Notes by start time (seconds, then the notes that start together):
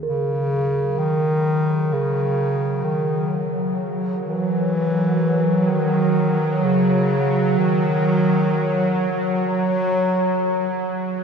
Already playing: D#2 D#3
0.03 C#3 F#3 A#4
0.99 D#3
1.93 C#3
2.84 D#3
4.26 E3
5.68 D#3
6.64 C#3
7.58 D#3
9.47 F#3